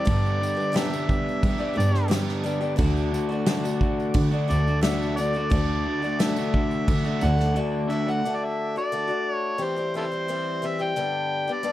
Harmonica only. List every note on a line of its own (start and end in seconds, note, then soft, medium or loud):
0.00 0.77 D5 loud
0.76 1.74 E5 loud
1.77 2.10 D5 medium
4.50 4.81 D5 loud
4.82 5.16 E5 loud
5.16 6.22 D5 loud
6.20 7.25 E5 loud
7.24 7.56 F#5 loud
7.89 8.12 E5 loud
8.11 8.37 F#5 medium
8.36 8.46 D5 medium
8.44 8.77 E5 medium
8.78 9.32 D5 loud
9.32 9.65 C#5 loud
9.63 9.96 C5 medium
9.97 10.06 E4 medium
9.97 10.03 A4 medium
9.97 10.68 C5 loud
10.66 10.84 E5 loud
10.83 11.54 G5 loud
11.52 11.72 D5 loud